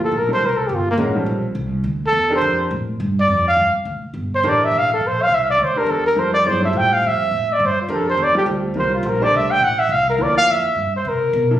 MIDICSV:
0, 0, Header, 1, 5, 480
1, 0, Start_track
1, 0, Tempo, 287632
1, 1161, Time_signature, 4, 2, 24, 8
1, 19353, End_track
2, 0, Start_track
2, 0, Title_t, "Trumpet"
2, 0, Program_c, 0, 56
2, 69, Note_on_c, 0, 69, 91
2, 292, Note_on_c, 0, 70, 84
2, 317, Note_off_c, 0, 69, 0
2, 535, Note_off_c, 0, 70, 0
2, 546, Note_on_c, 0, 72, 97
2, 767, Note_on_c, 0, 70, 90
2, 792, Note_off_c, 0, 72, 0
2, 944, Note_on_c, 0, 69, 76
2, 969, Note_off_c, 0, 70, 0
2, 1117, Note_on_c, 0, 67, 72
2, 1142, Note_off_c, 0, 69, 0
2, 1245, Note_on_c, 0, 65, 81
2, 1270, Note_off_c, 0, 67, 0
2, 1492, Note_off_c, 0, 65, 0
2, 1509, Note_on_c, 0, 58, 86
2, 1607, Note_off_c, 0, 58, 0
2, 3448, Note_on_c, 0, 69, 98
2, 3857, Note_off_c, 0, 69, 0
2, 3922, Note_on_c, 0, 72, 96
2, 4334, Note_off_c, 0, 72, 0
2, 5334, Note_on_c, 0, 74, 97
2, 5759, Note_off_c, 0, 74, 0
2, 5799, Note_on_c, 0, 77, 101
2, 6230, Note_off_c, 0, 77, 0
2, 7252, Note_on_c, 0, 72, 89
2, 7479, Note_on_c, 0, 74, 86
2, 7504, Note_off_c, 0, 72, 0
2, 7751, Note_on_c, 0, 76, 94
2, 7776, Note_off_c, 0, 74, 0
2, 7979, Note_on_c, 0, 77, 102
2, 8004, Note_off_c, 0, 76, 0
2, 8217, Note_off_c, 0, 77, 0
2, 8232, Note_on_c, 0, 69, 77
2, 8458, Note_on_c, 0, 72, 87
2, 8483, Note_off_c, 0, 69, 0
2, 8715, Note_on_c, 0, 77, 100
2, 8740, Note_off_c, 0, 72, 0
2, 8912, Note_on_c, 0, 76, 90
2, 8937, Note_off_c, 0, 77, 0
2, 9164, Note_off_c, 0, 76, 0
2, 9181, Note_on_c, 0, 74, 96
2, 9402, Note_on_c, 0, 72, 82
2, 9427, Note_off_c, 0, 74, 0
2, 9638, Note_on_c, 0, 70, 90
2, 9663, Note_off_c, 0, 72, 0
2, 9849, Note_on_c, 0, 69, 84
2, 9874, Note_off_c, 0, 70, 0
2, 10105, Note_off_c, 0, 69, 0
2, 10115, Note_on_c, 0, 70, 94
2, 10325, Note_on_c, 0, 72, 84
2, 10350, Note_off_c, 0, 70, 0
2, 10562, Note_off_c, 0, 72, 0
2, 10573, Note_on_c, 0, 74, 104
2, 10806, Note_on_c, 0, 72, 95
2, 10831, Note_off_c, 0, 74, 0
2, 11072, Note_off_c, 0, 72, 0
2, 11093, Note_on_c, 0, 76, 94
2, 11303, Note_on_c, 0, 79, 106
2, 11328, Note_off_c, 0, 76, 0
2, 11561, Note_on_c, 0, 77, 101
2, 11586, Note_off_c, 0, 79, 0
2, 11792, Note_on_c, 0, 76, 95
2, 11817, Note_off_c, 0, 77, 0
2, 12553, Note_on_c, 0, 74, 89
2, 12578, Note_off_c, 0, 76, 0
2, 12772, Note_on_c, 0, 72, 95
2, 12798, Note_off_c, 0, 74, 0
2, 13016, Note_off_c, 0, 72, 0
2, 13035, Note_on_c, 0, 65, 51
2, 13237, Note_on_c, 0, 69, 77
2, 13262, Note_off_c, 0, 65, 0
2, 13489, Note_off_c, 0, 69, 0
2, 13508, Note_on_c, 0, 72, 95
2, 13731, Note_on_c, 0, 74, 101
2, 13756, Note_off_c, 0, 72, 0
2, 13959, Note_off_c, 0, 74, 0
2, 13969, Note_on_c, 0, 67, 81
2, 14073, Note_off_c, 0, 67, 0
2, 14655, Note_on_c, 0, 72, 91
2, 14900, Note_off_c, 0, 72, 0
2, 14929, Note_on_c, 0, 65, 72
2, 15141, Note_on_c, 0, 70, 89
2, 15166, Note_off_c, 0, 65, 0
2, 15400, Note_on_c, 0, 74, 102
2, 15425, Note_off_c, 0, 70, 0
2, 15620, Note_on_c, 0, 76, 93
2, 15645, Note_off_c, 0, 74, 0
2, 15866, Note_on_c, 0, 79, 106
2, 15891, Note_off_c, 0, 76, 0
2, 16078, Note_on_c, 0, 78, 96
2, 16103, Note_off_c, 0, 79, 0
2, 16333, Note_on_c, 0, 76, 98
2, 16358, Note_off_c, 0, 78, 0
2, 16560, Note_on_c, 0, 77, 105
2, 16585, Note_off_c, 0, 76, 0
2, 16830, Note_off_c, 0, 77, 0
2, 16841, Note_on_c, 0, 70, 85
2, 17058, Note_on_c, 0, 74, 93
2, 17083, Note_off_c, 0, 70, 0
2, 17297, Note_off_c, 0, 74, 0
2, 17307, Note_on_c, 0, 77, 127
2, 17536, Note_on_c, 0, 76, 104
2, 17561, Note_off_c, 0, 77, 0
2, 18277, Note_off_c, 0, 76, 0
2, 18288, Note_on_c, 0, 72, 87
2, 18498, Note_on_c, 0, 70, 91
2, 18523, Note_off_c, 0, 72, 0
2, 19237, Note_off_c, 0, 70, 0
2, 19353, End_track
3, 0, Start_track
3, 0, Title_t, "Upright piano"
3, 0, Program_c, 1, 0
3, 0, Note_on_c, 1, 64, 58
3, 0, Note_on_c, 1, 67, 67
3, 168, Note_off_c, 1, 64, 0
3, 170, Note_off_c, 1, 67, 0
3, 475, Note_on_c, 1, 55, 61
3, 487, Note_on_c, 1, 60, 55
3, 491, Note_on_c, 1, 65, 52
3, 492, Note_on_c, 1, 69, 70
3, 655, Note_off_c, 1, 55, 0
3, 661, Note_off_c, 1, 60, 0
3, 663, Note_off_c, 1, 65, 0
3, 664, Note_off_c, 1, 69, 0
3, 1639, Note_on_c, 1, 56, 70
3, 1641, Note_on_c, 1, 61, 65
3, 1645, Note_on_c, 1, 66, 62
3, 1653, Note_on_c, 1, 70, 78
3, 1900, Note_off_c, 1, 56, 0
3, 1901, Note_off_c, 1, 61, 0
3, 1903, Note_off_c, 1, 66, 0
3, 1907, Note_off_c, 1, 70, 0
3, 1925, Note_on_c, 1, 55, 65
3, 1932, Note_on_c, 1, 60, 60
3, 1932, Note_on_c, 1, 69, 68
3, 1935, Note_on_c, 1, 65, 58
3, 2350, Note_off_c, 1, 55, 0
3, 2354, Note_off_c, 1, 60, 0
3, 2354, Note_off_c, 1, 69, 0
3, 2355, Note_off_c, 1, 65, 0
3, 3834, Note_on_c, 1, 69, 78
3, 3844, Note_on_c, 1, 62, 68
3, 3847, Note_on_c, 1, 67, 65
3, 3848, Note_on_c, 1, 70, 81
3, 4474, Note_off_c, 1, 69, 0
3, 4479, Note_off_c, 1, 62, 0
3, 4481, Note_off_c, 1, 67, 0
3, 4481, Note_off_c, 1, 70, 0
3, 7403, Note_on_c, 1, 62, 65
3, 7403, Note_on_c, 1, 69, 73
3, 7405, Note_on_c, 1, 67, 62
3, 7410, Note_on_c, 1, 70, 84
3, 8111, Note_off_c, 1, 62, 0
3, 8111, Note_off_c, 1, 69, 0
3, 8112, Note_off_c, 1, 67, 0
3, 8115, Note_off_c, 1, 70, 0
3, 9611, Note_on_c, 1, 62, 55
3, 9614, Note_on_c, 1, 69, 63
3, 9618, Note_on_c, 1, 67, 55
3, 9621, Note_on_c, 1, 70, 68
3, 10243, Note_off_c, 1, 62, 0
3, 10245, Note_off_c, 1, 69, 0
3, 10247, Note_off_c, 1, 67, 0
3, 10248, Note_off_c, 1, 70, 0
3, 10284, Note_on_c, 1, 55, 65
3, 10284, Note_on_c, 1, 60, 62
3, 10288, Note_on_c, 1, 65, 58
3, 10290, Note_on_c, 1, 69, 73
3, 10542, Note_off_c, 1, 55, 0
3, 10542, Note_off_c, 1, 60, 0
3, 10544, Note_off_c, 1, 65, 0
3, 10545, Note_off_c, 1, 69, 0
3, 10765, Note_on_c, 1, 59, 48
3, 10766, Note_on_c, 1, 54, 58
3, 10771, Note_on_c, 1, 64, 53
3, 10777, Note_on_c, 1, 68, 57
3, 11023, Note_off_c, 1, 54, 0
3, 11023, Note_off_c, 1, 59, 0
3, 11026, Note_off_c, 1, 64, 0
3, 11028, Note_off_c, 1, 68, 0
3, 11049, Note_on_c, 1, 55, 61
3, 11049, Note_on_c, 1, 60, 61
3, 11053, Note_on_c, 1, 65, 58
3, 11058, Note_on_c, 1, 69, 66
3, 12087, Note_off_c, 1, 55, 0
3, 12087, Note_off_c, 1, 60, 0
3, 12089, Note_off_c, 1, 65, 0
3, 12091, Note_off_c, 1, 69, 0
3, 13167, Note_on_c, 1, 62, 63
3, 13167, Note_on_c, 1, 69, 67
3, 13176, Note_on_c, 1, 67, 61
3, 13179, Note_on_c, 1, 70, 81
3, 13876, Note_off_c, 1, 62, 0
3, 13876, Note_off_c, 1, 69, 0
3, 13881, Note_off_c, 1, 67, 0
3, 13882, Note_off_c, 1, 70, 0
3, 13929, Note_on_c, 1, 55, 65
3, 13930, Note_on_c, 1, 60, 60
3, 13935, Note_on_c, 1, 65, 65
3, 13935, Note_on_c, 1, 69, 77
3, 14564, Note_off_c, 1, 55, 0
3, 14565, Note_off_c, 1, 60, 0
3, 14567, Note_off_c, 1, 65, 0
3, 14567, Note_off_c, 1, 69, 0
3, 14610, Note_on_c, 1, 60, 51
3, 14612, Note_on_c, 1, 55, 58
3, 14614, Note_on_c, 1, 65, 51
3, 14622, Note_on_c, 1, 70, 61
3, 15318, Note_off_c, 1, 60, 0
3, 15319, Note_off_c, 1, 55, 0
3, 15320, Note_off_c, 1, 65, 0
3, 15324, Note_off_c, 1, 70, 0
3, 15370, Note_on_c, 1, 57, 68
3, 15377, Note_on_c, 1, 62, 61
3, 15379, Note_on_c, 1, 67, 66
3, 15385, Note_on_c, 1, 72, 81
3, 16005, Note_off_c, 1, 57, 0
3, 16008, Note_off_c, 1, 62, 0
3, 16009, Note_off_c, 1, 67, 0
3, 16012, Note_off_c, 1, 72, 0
3, 16992, Note_on_c, 1, 53, 65
3, 16994, Note_on_c, 1, 58, 57
3, 17000, Note_on_c, 1, 64, 56
3, 17005, Note_on_c, 1, 69, 73
3, 17707, Note_off_c, 1, 53, 0
3, 17708, Note_off_c, 1, 58, 0
3, 17711, Note_off_c, 1, 64, 0
3, 17714, Note_off_c, 1, 69, 0
3, 19198, Note_on_c, 1, 53, 73
3, 19203, Note_on_c, 1, 58, 71
3, 19206, Note_on_c, 1, 64, 65
3, 19208, Note_on_c, 1, 69, 90
3, 19353, Note_off_c, 1, 53, 0
3, 19353, Note_off_c, 1, 58, 0
3, 19353, Note_off_c, 1, 64, 0
3, 19353, Note_off_c, 1, 69, 0
3, 19353, End_track
4, 0, Start_track
4, 0, Title_t, "Upright bass"
4, 0, Program_c, 2, 32
4, 0, Note_on_c, 2, 38, 91
4, 182, Note_off_c, 2, 38, 0
4, 197, Note_on_c, 2, 34, 84
4, 665, Note_off_c, 2, 34, 0
4, 678, Note_on_c, 2, 36, 78
4, 1146, Note_off_c, 2, 36, 0
4, 1154, Note_on_c, 2, 31, 84
4, 1617, Note_off_c, 2, 31, 0
4, 1627, Note_on_c, 2, 33, 95
4, 2100, Note_off_c, 2, 33, 0
4, 2107, Note_on_c, 2, 34, 84
4, 2574, Note_off_c, 2, 34, 0
4, 2584, Note_on_c, 2, 36, 83
4, 3054, Note_off_c, 2, 36, 0
4, 3064, Note_on_c, 2, 38, 82
4, 3534, Note_off_c, 2, 38, 0
4, 3544, Note_on_c, 2, 40, 87
4, 4017, Note_off_c, 2, 40, 0
4, 4029, Note_on_c, 2, 41, 93
4, 4500, Note_off_c, 2, 41, 0
4, 4517, Note_on_c, 2, 45, 89
4, 4984, Note_off_c, 2, 45, 0
4, 5003, Note_on_c, 2, 43, 90
4, 5457, Note_off_c, 2, 43, 0
4, 5467, Note_on_c, 2, 41, 91
4, 5938, Note_off_c, 2, 41, 0
4, 5950, Note_on_c, 2, 43, 87
4, 6222, Note_off_c, 2, 43, 0
4, 6431, Note_on_c, 2, 38, 84
4, 6702, Note_off_c, 2, 38, 0
4, 6901, Note_on_c, 2, 31, 82
4, 7375, Note_off_c, 2, 31, 0
4, 7399, Note_on_c, 2, 33, 95
4, 7858, Note_off_c, 2, 33, 0
4, 7868, Note_on_c, 2, 33, 83
4, 8339, Note_off_c, 2, 33, 0
4, 8354, Note_on_c, 2, 34, 80
4, 8818, Note_off_c, 2, 34, 0
4, 8828, Note_on_c, 2, 36, 83
4, 9299, Note_off_c, 2, 36, 0
4, 9309, Note_on_c, 2, 38, 85
4, 9582, Note_off_c, 2, 38, 0
4, 9784, Note_on_c, 2, 40, 87
4, 10258, Note_off_c, 2, 40, 0
4, 10266, Note_on_c, 2, 41, 83
4, 10739, Note_off_c, 2, 41, 0
4, 10753, Note_on_c, 2, 43, 89
4, 11223, Note_off_c, 2, 43, 0
4, 11232, Note_on_c, 2, 45, 92
4, 11703, Note_off_c, 2, 45, 0
4, 11722, Note_on_c, 2, 41, 84
4, 12188, Note_off_c, 2, 41, 0
4, 12201, Note_on_c, 2, 45, 86
4, 12668, Note_off_c, 2, 45, 0
4, 12677, Note_on_c, 2, 43, 90
4, 12948, Note_off_c, 2, 43, 0
4, 13157, Note_on_c, 2, 41, 89
4, 13626, Note_off_c, 2, 41, 0
4, 13637, Note_on_c, 2, 40, 84
4, 13908, Note_off_c, 2, 40, 0
4, 14117, Note_on_c, 2, 38, 91
4, 14574, Note_off_c, 2, 38, 0
4, 14584, Note_on_c, 2, 36, 82
4, 15060, Note_off_c, 2, 36, 0
4, 15067, Note_on_c, 2, 34, 94
4, 15533, Note_off_c, 2, 34, 0
4, 15543, Note_on_c, 2, 36, 89
4, 15821, Note_off_c, 2, 36, 0
4, 16018, Note_on_c, 2, 33, 85
4, 16496, Note_off_c, 2, 33, 0
4, 16504, Note_on_c, 2, 36, 83
4, 16979, Note_off_c, 2, 36, 0
4, 16989, Note_on_c, 2, 38, 87
4, 17461, Note_off_c, 2, 38, 0
4, 17472, Note_on_c, 2, 41, 89
4, 17745, Note_off_c, 2, 41, 0
4, 17945, Note_on_c, 2, 43, 87
4, 18418, Note_off_c, 2, 43, 0
4, 18436, Note_on_c, 2, 48, 88
4, 18899, Note_off_c, 2, 48, 0
4, 18909, Note_on_c, 2, 47, 98
4, 19353, Note_off_c, 2, 47, 0
4, 19353, End_track
5, 0, Start_track
5, 0, Title_t, "Muted upright bass strokes"
5, 6230, Note_on_c, 9, 29, 40
5, 6397, Note_off_c, 9, 29, 0
5, 6710, Note_on_c, 9, 29, 36
5, 6876, Note_off_c, 9, 29, 0
5, 9601, Note_on_c, 9, 29, 40
5, 9768, Note_off_c, 9, 29, 0
5, 12967, Note_on_c, 9, 29, 41
5, 13133, Note_off_c, 9, 29, 0
5, 13928, Note_on_c, 9, 29, 40
5, 14095, Note_off_c, 9, 29, 0
5, 15840, Note_on_c, 9, 29, 40
5, 16007, Note_off_c, 9, 29, 0
5, 17766, Note_on_c, 9, 29, 40
5, 17933, Note_off_c, 9, 29, 0
5, 19353, End_track
0, 0, End_of_file